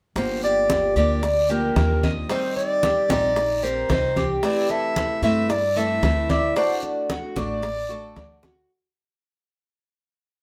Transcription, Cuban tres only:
0.43 0.95 G4 medium
0.97 1.48 D5 medium
1.50 2.02 G4 medium
2.04 2.29 D#5 medium
2.30 2.82 D#4 medium
2.84 3.09 G4 medium
3.10 3.62 D#4 medium
3.63 3.89 A#4 medium
3.90 4.16 D#4 medium
4.17 4.68 G4 medium
4.70 5.22 A4 medium
5.23 5.75 E5 medium
5.77 6.28 A4 medium
6.30 6.56 D5 medium
6.57 7.08 D4 medium
7.10 7.36 F#4 medium
7.37 7.89 D5 medium
7.91 8.16 A4 medium
8.17 8.43 D4 medium
8.44 8.70 F#4 medium

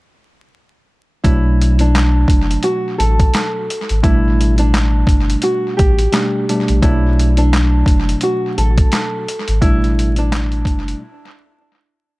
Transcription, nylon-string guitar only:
1.24 1.76 E4 loud
1.80 2.60 D4 medium
2.64 2.95 F#4 medium
2.98 3.99 A4 medium
4.04 4.56 E4 loud
4.59 5.39 D4 medium
5.43 5.75 F#4 medium
5.77 6.78 G4 medium
6.82 7.35 E4 loud
7.38 8.18 D4 medium
8.23 8.54 F#4 medium
8.58 9.58 A4 medium
9.62 10.14 E4 loud
10.18 10.98 D4 medium

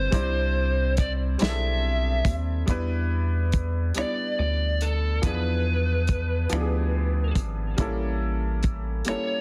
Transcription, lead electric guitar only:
0.00 0.94 C5 loud
1.00 1.11 D5 medium
1.42 2.33 E5 loud
3.97 4.38 D5 medium
4.39 4.83 D5 medium
4.82 5.24 A4 medium
5.25 7.33 B4 medium
9.09 9.41 C#5 medium

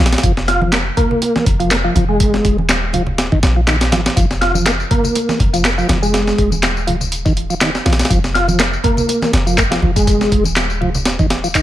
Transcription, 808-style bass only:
0.00 0.15 A#1 medium
0.23 0.91 F1 loud
1.46 1.89 F1 medium
1.96 2.38 F1 medium
2.45 3.42 D#1 medium
3.43 3.94 A#1 loud
3.92 4.09 G#1 medium
4.17 4.84 F1 loud
5.40 5.82 F1 loud
5.89 6.32 F1 medium
6.38 7.79 D#1 medium
7.86 8.02 A#1 medium
8.11 8.78 F1 loud
9.33 9.76 F1 medium
9.83 10.25 F1 medium
10.32 11.62 D#1 medium

